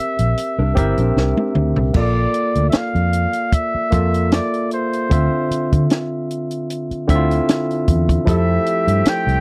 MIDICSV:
0, 0, Header, 1, 8, 480
1, 0, Start_track
1, 0, Tempo, 789474
1, 1186, Time_signature, 4, 2, 24, 8
1, 5717, End_track
2, 0, Start_track
2, 0, Title_t, "Flugelhorn"
2, 0, Program_c, 0, 56
2, 0, Note_on_c, 0, 76, 98
2, 953, Note_off_c, 0, 76, 0
2, 1216, Note_on_c, 0, 74, 94
2, 1618, Note_off_c, 0, 74, 0
2, 1639, Note_on_c, 0, 76, 70
2, 1684, Note_on_c, 0, 77, 95
2, 1693, Note_off_c, 0, 76, 0
2, 2153, Note_on_c, 0, 76, 94
2, 2162, Note_off_c, 0, 77, 0
2, 2630, Note_off_c, 0, 76, 0
2, 2635, Note_on_c, 0, 74, 82
2, 2855, Note_off_c, 0, 74, 0
2, 2879, Note_on_c, 0, 72, 77
2, 3569, Note_off_c, 0, 72, 0
2, 5033, Note_on_c, 0, 76, 102
2, 5525, Note_on_c, 0, 79, 97
2, 5534, Note_off_c, 0, 76, 0
2, 5717, Note_off_c, 0, 79, 0
2, 5717, End_track
3, 0, Start_track
3, 0, Title_t, "Clean electric guitar"
3, 0, Program_c, 1, 27
3, 358, Note_on_c, 1, 70, 62
3, 361, Note_on_c, 1, 62, 53
3, 461, Note_off_c, 1, 70, 0
3, 463, Note_off_c, 1, 62, 0
3, 465, Note_on_c, 1, 72, 70
3, 470, Note_on_c, 1, 64, 57
3, 588, Note_off_c, 1, 72, 0
3, 591, Note_off_c, 1, 64, 0
3, 599, Note_on_c, 1, 70, 62
3, 602, Note_on_c, 1, 62, 56
3, 1163, Note_off_c, 1, 70, 0
3, 1165, Note_off_c, 1, 62, 0
3, 5717, End_track
4, 0, Start_track
4, 0, Title_t, "Tine electric piano"
4, 0, Program_c, 2, 4
4, 0, Control_c, 2, 64, 127
4, 0, Note_on_c, 2, 60, 67
4, 0, Note_on_c, 2, 67, 61
4, 0, Note_on_c, 2, 70, 66
4, 0, Note_on_c, 2, 76, 75
4, 456, Note_off_c, 2, 60, 0
4, 456, Note_on_c, 2, 60, 70
4, 461, Note_off_c, 2, 67, 0
4, 461, Note_on_c, 2, 67, 69
4, 469, Note_off_c, 2, 70, 0
4, 469, Note_on_c, 2, 70, 70
4, 475, Note_off_c, 2, 76, 0
4, 475, Note_on_c, 2, 76, 87
4, 954, Note_off_c, 2, 60, 0
4, 956, Note_off_c, 2, 67, 0
4, 960, Note_off_c, 2, 70, 0
4, 963, Note_off_c, 2, 76, 0
4, 1176, Note_on_c, 2, 58, 63
4, 1183, Note_on_c, 2, 65, 54
4, 1191, Note_on_c, 2, 69, 53
4, 1193, Control_c, 2, 64, 0
4, 1195, Note_on_c, 2, 74, 65
4, 1311, Control_c, 2, 64, 127
4, 1842, Note_off_c, 2, 58, 0
4, 1846, Note_off_c, 2, 65, 0
4, 1850, Note_off_c, 2, 69, 0
4, 1852, Note_off_c, 2, 74, 0
4, 2373, Note_on_c, 2, 58, 60
4, 2382, Note_on_c, 2, 65, 61
4, 2387, Note_on_c, 2, 69, 57
4, 2397, Note_on_c, 2, 76, 73
4, 2873, Note_off_c, 2, 58, 0
4, 2877, Note_off_c, 2, 65, 0
4, 2880, Note_off_c, 2, 69, 0
4, 2885, Note_off_c, 2, 76, 0
4, 3097, Note_on_c, 2, 50, 64
4, 3102, Note_on_c, 2, 60, 60
4, 3109, Note_on_c, 2, 65, 61
4, 3115, Control_c, 2, 64, 0
4, 3115, Note_on_c, 2, 76, 67
4, 3223, Control_c, 2, 64, 127
4, 3763, Note_off_c, 2, 50, 0
4, 3765, Note_off_c, 2, 60, 0
4, 3769, Note_off_c, 2, 65, 0
4, 3772, Note_off_c, 2, 76, 0
4, 4298, Note_on_c, 2, 50, 74
4, 4305, Note_on_c, 2, 60, 67
4, 4311, Note_on_c, 2, 64, 65
4, 4317, Note_on_c, 2, 76, 98
4, 4352, Note_off_c, 2, 64, 0
4, 4352, Note_on_c, 2, 65, 76
4, 4795, Note_off_c, 2, 50, 0
4, 4798, Note_off_c, 2, 60, 0
4, 4805, Note_off_c, 2, 76, 0
4, 4822, Note_off_c, 2, 65, 0
4, 5016, Note_on_c, 2, 53, 67
4, 5024, Note_on_c, 2, 64, 61
4, 5028, Note_on_c, 2, 67, 55
4, 5034, Control_c, 2, 64, 0
4, 5036, Note_on_c, 2, 69, 81
4, 5149, Control_c, 2, 64, 127
4, 5682, Note_off_c, 2, 53, 0
4, 5686, Note_off_c, 2, 64, 0
4, 5688, Note_off_c, 2, 67, 0
4, 5692, Note_off_c, 2, 69, 0
4, 5717, End_track
5, 0, Start_track
5, 0, Title_t, "Woodwind section"
5, 0, Program_c, 3, 71
5, 5012, Note_on_c, 3, 57, 84
5, 5015, Note_on_c, 3, 60, 76
5, 5017, Note_on_c, 3, 53, 81
5, 5017, Note_on_c, 3, 67, 93
5, 5717, Note_off_c, 3, 53, 0
5, 5717, Note_off_c, 3, 57, 0
5, 5717, Note_off_c, 3, 60, 0
5, 5717, Note_off_c, 3, 67, 0
5, 5717, End_track
6, 0, Start_track
6, 0, Title_t, "Fingered electric bass"
6, 0, Program_c, 4, 33
6, 116, Note_on_c, 4, 34, 68
6, 200, Note_off_c, 4, 34, 0
6, 356, Note_on_c, 4, 36, 65
6, 440, Note_off_c, 4, 36, 0
6, 468, Note_on_c, 4, 31, 81
6, 566, Note_off_c, 4, 31, 0
6, 595, Note_on_c, 4, 34, 80
6, 680, Note_off_c, 4, 34, 0
6, 707, Note_on_c, 4, 36, 87
6, 806, Note_off_c, 4, 36, 0
6, 948, Note_on_c, 4, 38, 80
6, 1046, Note_off_c, 4, 38, 0
6, 1075, Note_on_c, 4, 36, 83
6, 1160, Note_off_c, 4, 36, 0
6, 1187, Note_on_c, 4, 34, 88
6, 1370, Note_off_c, 4, 34, 0
6, 1554, Note_on_c, 4, 38, 82
6, 1639, Note_off_c, 4, 38, 0
6, 1793, Note_on_c, 4, 41, 92
6, 1978, Note_off_c, 4, 41, 0
6, 2387, Note_on_c, 4, 41, 93
6, 2670, Note_off_c, 4, 41, 0
6, 3109, Note_on_c, 4, 38, 88
6, 3208, Note_off_c, 4, 38, 0
6, 3483, Note_on_c, 4, 50, 87
6, 3565, Note_off_c, 4, 50, 0
6, 4311, Note_on_c, 4, 38, 91
6, 4493, Note_off_c, 4, 38, 0
6, 4792, Note_on_c, 4, 40, 78
6, 4974, Note_off_c, 4, 40, 0
6, 5030, Note_on_c, 4, 41, 103
6, 5212, Note_off_c, 4, 41, 0
6, 5396, Note_on_c, 4, 43, 87
6, 5481, Note_off_c, 4, 43, 0
6, 5635, Note_on_c, 4, 36, 85
6, 5717, Note_off_c, 4, 36, 0
6, 5717, End_track
7, 0, Start_track
7, 0, Title_t, "Muted fingered electric bass strokes"
7, 1667, Note_on_c, 9, 29, 46
7, 1728, Note_off_c, 9, 29, 0
7, 2278, Note_on_c, 9, 29, 43
7, 2338, Note_off_c, 9, 29, 0
7, 3349, Note_on_c, 9, 29, 42
7, 3410, Note_off_c, 9, 29, 0
7, 4202, Note_on_c, 9, 29, 41
7, 4262, Note_off_c, 9, 29, 0
7, 5506, Note_on_c, 9, 29, 49
7, 5566, Note_off_c, 9, 29, 0
7, 5717, End_track
8, 0, Start_track
8, 0, Title_t, "Drums"
8, 113, Note_on_c, 9, 42, 50
8, 174, Note_off_c, 9, 42, 0
8, 228, Note_on_c, 9, 42, 69
8, 289, Note_off_c, 9, 42, 0
8, 466, Note_on_c, 9, 42, 64
8, 468, Note_on_c, 9, 36, 83
8, 527, Note_off_c, 9, 42, 0
8, 528, Note_off_c, 9, 36, 0
8, 593, Note_on_c, 9, 42, 41
8, 654, Note_off_c, 9, 42, 0
8, 712, Note_on_c, 9, 38, 53
8, 773, Note_off_c, 9, 38, 0
8, 834, Note_on_c, 9, 48, 57
8, 895, Note_off_c, 9, 48, 0
8, 943, Note_on_c, 9, 45, 75
8, 1004, Note_off_c, 9, 45, 0
8, 1071, Note_on_c, 9, 43, 73
8, 1132, Note_off_c, 9, 43, 0
8, 1180, Note_on_c, 9, 49, 79
8, 1185, Note_on_c, 9, 36, 115
8, 1241, Note_off_c, 9, 49, 0
8, 1245, Note_off_c, 9, 36, 0
8, 1422, Note_on_c, 9, 42, 75
8, 1483, Note_off_c, 9, 42, 0
8, 1552, Note_on_c, 9, 42, 52
8, 1613, Note_off_c, 9, 42, 0
8, 1654, Note_on_c, 9, 42, 91
8, 1662, Note_on_c, 9, 38, 91
8, 1715, Note_off_c, 9, 42, 0
8, 1723, Note_off_c, 9, 38, 0
8, 1796, Note_on_c, 9, 42, 28
8, 1857, Note_off_c, 9, 42, 0
8, 1903, Note_on_c, 9, 42, 67
8, 1964, Note_off_c, 9, 42, 0
8, 2025, Note_on_c, 9, 42, 57
8, 2086, Note_off_c, 9, 42, 0
8, 2142, Note_on_c, 9, 42, 76
8, 2143, Note_on_c, 9, 36, 86
8, 2203, Note_off_c, 9, 42, 0
8, 2204, Note_off_c, 9, 36, 0
8, 2382, Note_on_c, 9, 42, 71
8, 2387, Note_on_c, 9, 36, 89
8, 2443, Note_off_c, 9, 42, 0
8, 2448, Note_off_c, 9, 36, 0
8, 2518, Note_on_c, 9, 42, 49
8, 2578, Note_off_c, 9, 42, 0
8, 2624, Note_on_c, 9, 42, 84
8, 2629, Note_on_c, 9, 38, 105
8, 2685, Note_off_c, 9, 42, 0
8, 2690, Note_off_c, 9, 38, 0
8, 2758, Note_on_c, 9, 42, 35
8, 2819, Note_off_c, 9, 42, 0
8, 2864, Note_on_c, 9, 42, 52
8, 2925, Note_off_c, 9, 42, 0
8, 2999, Note_on_c, 9, 42, 46
8, 3059, Note_off_c, 9, 42, 0
8, 3108, Note_on_c, 9, 36, 105
8, 3108, Note_on_c, 9, 42, 78
8, 3169, Note_off_c, 9, 36, 0
8, 3169, Note_off_c, 9, 42, 0
8, 3352, Note_on_c, 9, 42, 74
8, 3413, Note_off_c, 9, 42, 0
8, 3481, Note_on_c, 9, 42, 55
8, 3482, Note_on_c, 9, 36, 88
8, 3542, Note_off_c, 9, 42, 0
8, 3543, Note_off_c, 9, 36, 0
8, 3587, Note_on_c, 9, 42, 101
8, 3595, Note_on_c, 9, 38, 93
8, 3648, Note_off_c, 9, 42, 0
8, 3656, Note_off_c, 9, 38, 0
8, 3834, Note_on_c, 9, 42, 63
8, 3894, Note_off_c, 9, 42, 0
8, 3956, Note_on_c, 9, 42, 50
8, 4017, Note_off_c, 9, 42, 0
8, 4074, Note_on_c, 9, 42, 74
8, 4135, Note_off_c, 9, 42, 0
8, 4202, Note_on_c, 9, 42, 33
8, 4263, Note_off_c, 9, 42, 0
8, 4311, Note_on_c, 9, 36, 84
8, 4311, Note_on_c, 9, 42, 66
8, 4372, Note_off_c, 9, 36, 0
8, 4372, Note_off_c, 9, 42, 0
8, 4445, Note_on_c, 9, 42, 47
8, 4506, Note_off_c, 9, 42, 0
8, 4552, Note_on_c, 9, 42, 90
8, 4556, Note_on_c, 9, 38, 105
8, 4612, Note_off_c, 9, 42, 0
8, 4617, Note_off_c, 9, 38, 0
8, 4685, Note_on_c, 9, 42, 34
8, 4746, Note_off_c, 9, 42, 0
8, 4789, Note_on_c, 9, 42, 57
8, 4791, Note_on_c, 9, 36, 72
8, 4850, Note_off_c, 9, 42, 0
8, 4852, Note_off_c, 9, 36, 0
8, 4920, Note_on_c, 9, 36, 79
8, 4921, Note_on_c, 9, 42, 48
8, 4980, Note_off_c, 9, 36, 0
8, 4982, Note_off_c, 9, 42, 0
8, 5030, Note_on_c, 9, 36, 106
8, 5033, Note_on_c, 9, 42, 72
8, 5090, Note_off_c, 9, 36, 0
8, 5094, Note_off_c, 9, 42, 0
8, 5268, Note_on_c, 9, 42, 72
8, 5329, Note_off_c, 9, 42, 0
8, 5398, Note_on_c, 9, 42, 59
8, 5459, Note_off_c, 9, 42, 0
8, 5505, Note_on_c, 9, 42, 98
8, 5513, Note_on_c, 9, 38, 89
8, 5565, Note_off_c, 9, 42, 0
8, 5573, Note_off_c, 9, 38, 0
8, 5645, Note_on_c, 9, 42, 34
8, 5706, Note_off_c, 9, 42, 0
8, 5717, End_track
0, 0, End_of_file